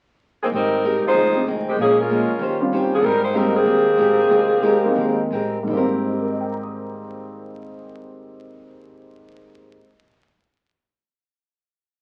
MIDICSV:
0, 0, Header, 1, 6, 480
1, 0, Start_track
1, 0, Key_signature, -4, "major"
1, 0, Tempo, 313316
1, 803, Time_signature, 4, 2, 24, 8
1, 5602, Tempo, 329308
1, 7522, Tempo, 367197
1, 16726, End_track
2, 0, Start_track
2, 0, Title_t, "Saxophone section"
2, 0, Program_c, 0, 65
2, 659, Note_on_c, 0, 68, 82
2, 663, Note_on_c, 0, 51, 76
2, 665, Note_on_c, 0, 60, 71
2, 666, Note_on_c, 0, 58, 69
2, 731, Note_off_c, 0, 68, 0
2, 734, Note_off_c, 0, 51, 0
2, 736, Note_off_c, 0, 60, 0
2, 737, Note_off_c, 0, 58, 0
2, 847, Note_on_c, 0, 63, 85
2, 848, Note_on_c, 0, 70, 95
2, 849, Note_on_c, 0, 60, 85
2, 853, Note_on_c, 0, 55, 79
2, 1556, Note_off_c, 0, 63, 0
2, 1557, Note_off_c, 0, 60, 0
2, 1557, Note_off_c, 0, 70, 0
2, 1559, Note_off_c, 0, 55, 0
2, 1637, Note_on_c, 0, 63, 94
2, 1642, Note_on_c, 0, 65, 80
2, 1645, Note_on_c, 0, 56, 83
2, 1648, Note_on_c, 0, 72, 112
2, 2224, Note_off_c, 0, 63, 0
2, 2227, Note_off_c, 0, 65, 0
2, 2228, Note_off_c, 0, 56, 0
2, 2230, Note_off_c, 0, 72, 0
2, 2588, Note_on_c, 0, 60, 67
2, 2593, Note_on_c, 0, 67, 77
2, 2597, Note_on_c, 0, 51, 66
2, 2598, Note_on_c, 0, 56, 70
2, 2733, Note_off_c, 0, 60, 0
2, 2735, Note_off_c, 0, 67, 0
2, 2738, Note_off_c, 0, 51, 0
2, 2738, Note_off_c, 0, 56, 0
2, 2771, Note_on_c, 0, 58, 79
2, 2775, Note_on_c, 0, 61, 73
2, 2776, Note_on_c, 0, 53, 76
2, 2777, Note_on_c, 0, 68, 97
2, 3031, Note_off_c, 0, 58, 0
2, 3033, Note_off_c, 0, 53, 0
2, 3033, Note_off_c, 0, 61, 0
2, 3034, Note_off_c, 0, 68, 0
2, 3070, Note_on_c, 0, 70, 70
2, 3072, Note_on_c, 0, 56, 65
2, 3075, Note_on_c, 0, 65, 69
2, 3076, Note_on_c, 0, 61, 71
2, 3660, Note_off_c, 0, 56, 0
2, 3945, Note_off_c, 0, 70, 0
2, 3947, Note_off_c, 0, 65, 0
2, 3948, Note_off_c, 0, 61, 0
2, 4500, Note_on_c, 0, 53, 78
2, 4500, Note_on_c, 0, 61, 75
2, 4501, Note_on_c, 0, 58, 70
2, 4508, Note_on_c, 0, 68, 80
2, 4605, Note_off_c, 0, 53, 0
2, 4605, Note_off_c, 0, 61, 0
2, 4606, Note_off_c, 0, 58, 0
2, 4608, Note_on_c, 0, 69, 74
2, 4609, Note_off_c, 0, 68, 0
2, 4645, Note_off_c, 0, 69, 0
2, 4659, Note_on_c, 0, 70, 99
2, 4661, Note_on_c, 0, 60, 87
2, 4662, Note_on_c, 0, 63, 89
2, 4663, Note_on_c, 0, 55, 83
2, 4941, Note_off_c, 0, 63, 0
2, 4952, Note_off_c, 0, 70, 0
2, 4953, Note_off_c, 0, 60, 0
2, 4954, Note_off_c, 0, 55, 0
2, 4960, Note_on_c, 0, 63, 71
2, 4960, Note_on_c, 0, 67, 74
2, 4960, Note_on_c, 0, 72, 90
2, 4964, Note_on_c, 0, 58, 75
2, 5110, Note_off_c, 0, 63, 0
2, 5115, Note_off_c, 0, 67, 0
2, 5116, Note_off_c, 0, 72, 0
2, 5118, Note_off_c, 0, 58, 0
2, 5126, Note_on_c, 0, 55, 95
2, 5128, Note_on_c, 0, 63, 84
2, 5134, Note_on_c, 0, 70, 99
2, 5136, Note_on_c, 0, 60, 85
2, 5411, Note_off_c, 0, 60, 0
2, 5426, Note_on_c, 0, 68, 85
2, 5427, Note_off_c, 0, 55, 0
2, 5428, Note_off_c, 0, 63, 0
2, 5430, Note_on_c, 0, 51, 80
2, 5430, Note_on_c, 0, 60, 85
2, 5431, Note_off_c, 0, 70, 0
2, 5432, Note_on_c, 0, 58, 77
2, 7979, Note_off_c, 0, 68, 0
2, 7980, Note_off_c, 0, 51, 0
2, 7980, Note_off_c, 0, 60, 0
2, 7981, Note_off_c, 0, 58, 0
2, 16726, End_track
3, 0, Start_track
3, 0, Title_t, "Grand piano"
3, 0, Program_c, 1, 0
3, 2041, Note_on_c, 1, 56, 47
3, 2050, Note_on_c, 1, 60, 52
3, 2061, Note_on_c, 1, 63, 46
3, 2066, Note_on_c, 1, 67, 57
3, 2213, Note_off_c, 1, 56, 0
3, 2217, Note_off_c, 1, 60, 0
3, 2223, Note_off_c, 1, 63, 0
3, 2225, Note_off_c, 1, 67, 0
3, 3981, Note_on_c, 1, 55, 64
3, 3988, Note_on_c, 1, 60, 51
3, 3996, Note_on_c, 1, 61, 53
3, 4004, Note_on_c, 1, 65, 66
3, 4602, Note_off_c, 1, 55, 0
3, 4605, Note_off_c, 1, 60, 0
3, 4609, Note_off_c, 1, 61, 0
3, 4613, Note_off_c, 1, 65, 0
3, 5106, Note_on_c, 1, 55, 54
3, 5114, Note_on_c, 1, 58, 57
3, 5118, Note_on_c, 1, 60, 48
3, 5131, Note_on_c, 1, 63, 55
3, 5830, Note_off_c, 1, 55, 0
3, 5834, Note_off_c, 1, 58, 0
3, 5836, Note_off_c, 1, 60, 0
3, 5842, Note_off_c, 1, 63, 0
3, 7329, Note_on_c, 1, 56, 66
3, 7335, Note_on_c, 1, 58, 61
3, 7344, Note_on_c, 1, 60, 58
3, 7355, Note_on_c, 1, 63, 73
3, 7940, Note_off_c, 1, 56, 0
3, 7943, Note_off_c, 1, 58, 0
3, 7947, Note_off_c, 1, 60, 0
3, 7952, Note_off_c, 1, 63, 0
3, 8381, Note_on_c, 1, 44, 57
3, 8425, Note_on_c, 1, 51, 49
3, 8463, Note_on_c, 1, 55, 50
3, 8502, Note_on_c, 1, 58, 53
3, 8541, Note_on_c, 1, 60, 68
3, 8938, Note_on_c, 1, 63, 38
3, 9040, Note_on_c, 1, 67, 37
3, 9145, Note_on_c, 1, 70, 36
3, 9264, Note_on_c, 1, 75, 31
3, 9391, Note_on_c, 1, 79, 33
3, 9537, Note_on_c, 1, 82, 30
3, 9686, Note_on_c, 1, 87, 32
3, 13738, Note_off_c, 1, 44, 0
3, 13781, Note_off_c, 1, 51, 0
3, 13820, Note_off_c, 1, 55, 0
3, 13859, Note_off_c, 1, 58, 0
3, 13897, Note_off_c, 1, 60, 0
3, 14211, Note_off_c, 1, 63, 0
3, 14262, Note_off_c, 1, 67, 0
3, 14315, Note_off_c, 1, 70, 0
3, 14374, Note_off_c, 1, 75, 0
3, 14437, Note_off_c, 1, 79, 0
3, 14511, Note_off_c, 1, 82, 0
3, 14585, Note_off_c, 1, 87, 0
3, 16726, End_track
4, 0, Start_track
4, 0, Title_t, "Steel-string acoustic guitar"
4, 0, Program_c, 2, 25
4, 785, Note_on_c, 2, 56, 46
4, 803, Note_on_c, 2, 60, 40
4, 819, Note_on_c, 2, 67, 46
4, 831, Note_on_c, 2, 70, 40
4, 1116, Note_off_c, 2, 56, 0
4, 1125, Note_off_c, 2, 60, 0
4, 1133, Note_off_c, 2, 67, 0
4, 1139, Note_off_c, 2, 70, 0
4, 1286, Note_on_c, 2, 56, 64
4, 1301, Note_on_c, 2, 60, 59
4, 1310, Note_on_c, 2, 67, 70
4, 1314, Note_on_c, 2, 70, 78
4, 1606, Note_off_c, 2, 56, 0
4, 1614, Note_off_c, 2, 60, 0
4, 1618, Note_off_c, 2, 67, 0
4, 1620, Note_off_c, 2, 70, 0
4, 1745, Note_on_c, 2, 41, 37
4, 1769, Note_on_c, 2, 51, 45
4, 1778, Note_on_c, 2, 56, 53
4, 1792, Note_on_c, 2, 60, 44
4, 2076, Note_off_c, 2, 41, 0
4, 2088, Note_off_c, 2, 51, 0
4, 2092, Note_off_c, 2, 56, 0
4, 2099, Note_off_c, 2, 60, 0
4, 2241, Note_on_c, 2, 41, 67
4, 2252, Note_on_c, 2, 51, 62
4, 2261, Note_on_c, 2, 56, 73
4, 2272, Note_on_c, 2, 60, 68
4, 2563, Note_off_c, 2, 41, 0
4, 2569, Note_off_c, 2, 51, 0
4, 2573, Note_off_c, 2, 56, 0
4, 2579, Note_off_c, 2, 60, 0
4, 2731, Note_on_c, 2, 46, 46
4, 2742, Note_on_c, 2, 53, 49
4, 2755, Note_on_c, 2, 56, 51
4, 2775, Note_on_c, 2, 61, 54
4, 3048, Note_off_c, 2, 46, 0
4, 3054, Note_off_c, 2, 53, 0
4, 3060, Note_off_c, 2, 56, 0
4, 3070, Note_off_c, 2, 61, 0
4, 3204, Note_on_c, 2, 46, 65
4, 3220, Note_on_c, 2, 53, 67
4, 3229, Note_on_c, 2, 56, 67
4, 3240, Note_on_c, 2, 61, 72
4, 3524, Note_off_c, 2, 46, 0
4, 3532, Note_off_c, 2, 53, 0
4, 3537, Note_off_c, 2, 56, 0
4, 3542, Note_off_c, 2, 61, 0
4, 3670, Note_on_c, 2, 51, 50
4, 3696, Note_on_c, 2, 61, 57
4, 3710, Note_on_c, 2, 67, 54
4, 3712, Note_on_c, 2, 72, 57
4, 3996, Note_off_c, 2, 51, 0
4, 4009, Note_off_c, 2, 61, 0
4, 4016, Note_off_c, 2, 67, 0
4, 4017, Note_off_c, 2, 72, 0
4, 4166, Note_on_c, 2, 51, 55
4, 4179, Note_on_c, 2, 61, 63
4, 4184, Note_on_c, 2, 67, 60
4, 4191, Note_on_c, 2, 72, 76
4, 4483, Note_off_c, 2, 51, 0
4, 4490, Note_off_c, 2, 61, 0
4, 4492, Note_off_c, 2, 67, 0
4, 4496, Note_off_c, 2, 72, 0
4, 4622, Note_on_c, 2, 56, 45
4, 4632, Note_on_c, 2, 60, 45
4, 4644, Note_on_c, 2, 67, 52
4, 4661, Note_on_c, 2, 70, 48
4, 4951, Note_off_c, 2, 56, 0
4, 4956, Note_off_c, 2, 60, 0
4, 4962, Note_off_c, 2, 67, 0
4, 4971, Note_off_c, 2, 70, 0
4, 5109, Note_on_c, 2, 56, 68
4, 5121, Note_on_c, 2, 60, 74
4, 5130, Note_on_c, 2, 67, 85
4, 5135, Note_on_c, 2, 70, 86
4, 5436, Note_off_c, 2, 56, 0
4, 5442, Note_off_c, 2, 60, 0
4, 5447, Note_off_c, 2, 67, 0
4, 5449, Note_off_c, 2, 70, 0
4, 5587, Note_on_c, 2, 56, 41
4, 5605, Note_on_c, 2, 60, 42
4, 5616, Note_on_c, 2, 67, 51
4, 5633, Note_on_c, 2, 70, 43
4, 5906, Note_off_c, 2, 56, 0
4, 5914, Note_off_c, 2, 60, 0
4, 5920, Note_off_c, 2, 67, 0
4, 5928, Note_off_c, 2, 70, 0
4, 6060, Note_on_c, 2, 56, 64
4, 6070, Note_on_c, 2, 60, 64
4, 6079, Note_on_c, 2, 67, 66
4, 6087, Note_on_c, 2, 70, 68
4, 6379, Note_off_c, 2, 56, 0
4, 6385, Note_off_c, 2, 60, 0
4, 6389, Note_off_c, 2, 67, 0
4, 6393, Note_off_c, 2, 70, 0
4, 6519, Note_on_c, 2, 56, 44
4, 6534, Note_on_c, 2, 60, 53
4, 6548, Note_on_c, 2, 67, 53
4, 6562, Note_on_c, 2, 70, 52
4, 6853, Note_off_c, 2, 56, 0
4, 6860, Note_off_c, 2, 60, 0
4, 6867, Note_off_c, 2, 67, 0
4, 6874, Note_off_c, 2, 70, 0
4, 7013, Note_on_c, 2, 56, 73
4, 7021, Note_on_c, 2, 60, 72
4, 7027, Note_on_c, 2, 67, 82
4, 7044, Note_on_c, 2, 70, 80
4, 7349, Note_off_c, 2, 56, 0
4, 7353, Note_off_c, 2, 60, 0
4, 7356, Note_off_c, 2, 67, 0
4, 7365, Note_off_c, 2, 70, 0
4, 7485, Note_on_c, 2, 56, 51
4, 7511, Note_on_c, 2, 60, 46
4, 7517, Note_on_c, 2, 67, 51
4, 7529, Note_on_c, 2, 70, 63
4, 7809, Note_off_c, 2, 56, 0
4, 7821, Note_off_c, 2, 60, 0
4, 7823, Note_off_c, 2, 67, 0
4, 7829, Note_off_c, 2, 70, 0
4, 7971, Note_on_c, 2, 56, 55
4, 7982, Note_on_c, 2, 60, 61
4, 7984, Note_on_c, 2, 67, 62
4, 7995, Note_on_c, 2, 70, 60
4, 8288, Note_off_c, 2, 56, 0
4, 8294, Note_off_c, 2, 60, 0
4, 8295, Note_off_c, 2, 67, 0
4, 8300, Note_off_c, 2, 70, 0
4, 8471, Note_on_c, 2, 60, 52
4, 8519, Note_on_c, 2, 67, 60
4, 8563, Note_on_c, 2, 70, 67
4, 13828, Note_off_c, 2, 60, 0
4, 13875, Note_off_c, 2, 67, 0
4, 13919, Note_off_c, 2, 70, 0
4, 16726, End_track
5, 0, Start_track
5, 0, Title_t, "Upright bass"
5, 0, Program_c, 3, 32
5, 791, Note_on_c, 3, 32, 77
5, 1526, Note_off_c, 3, 32, 0
5, 1752, Note_on_c, 3, 29, 85
5, 2669, Note_off_c, 3, 29, 0
5, 2708, Note_on_c, 3, 34, 83
5, 3442, Note_off_c, 3, 34, 0
5, 3661, Note_on_c, 3, 39, 89
5, 4580, Note_off_c, 3, 39, 0
5, 4633, Note_on_c, 3, 32, 87
5, 5550, Note_off_c, 3, 32, 0
5, 5593, Note_on_c, 3, 39, 93
5, 6030, Note_off_c, 3, 39, 0
5, 6059, Note_on_c, 3, 33, 73
5, 6503, Note_off_c, 3, 33, 0
5, 6523, Note_on_c, 3, 36, 80
5, 7462, Note_off_c, 3, 36, 0
5, 7504, Note_on_c, 3, 39, 85
5, 7938, Note_off_c, 3, 39, 0
5, 7955, Note_on_c, 3, 33, 70
5, 8404, Note_off_c, 3, 33, 0
5, 8436, Note_on_c, 3, 32, 89
5, 13740, Note_off_c, 3, 32, 0
5, 16726, End_track
6, 0, Start_track
6, 0, Title_t, "Muted upright bass strokes"
6, 1579, Note_on_c, 9, 29, 39
6, 1732, Note_off_c, 9, 29, 0
6, 3497, Note_on_c, 9, 29, 37
6, 3650, Note_off_c, 9, 29, 0
6, 16726, End_track
0, 0, End_of_file